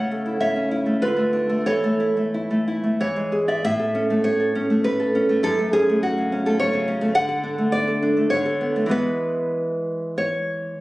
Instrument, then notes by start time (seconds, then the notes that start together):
nylon-string guitar
Already playing: C#3 A3 C#5 F#5
0.11 A4
0.26 E4
0.40 A3 C#5 E5
0.56 C#4
0.71 E4
0.86 A3
1.02 D3 F4 B4
1.16 A3
1.33 D4
1.50 A3
1.66 E3 A4 C#5
1.84 A3
2.00 E4
2.17 A3
2.34 E4
2.51 A3
2.68 E4
2.84 A3
3.00 E3 C#5
3.16 G#3
3.32 G#4
3.48 D5 E5
3.64 A2 E5
3.79 A4
3.95 C#4
4.10 A3
4.24 C#5
4.40 A4
4.55 C#4
4.70 A3
4.84 B4
5.00 A4
5.15 C#4
5.29 A3
5.43 F#2 A4
5.59 A3
5.73 C#4 G#4
5.89 A3
6.03 F#4
6.18 C#3
6.32 C#4
6.46 A3 A4
6.60 C#5
6.73 C#3
6.88 C#4
7.01 A3
7.15 D3 F#5
7.29 A4
7.44 D4
7.58 A3
7.72 D5
7.87 A4
8.02 D4
8.17 A3
8.30 D3 C#5
8.46 A4
8.61 B3
8.76 A3
8.86 E3 G#3 B3
8.91 B4
10.18 C#5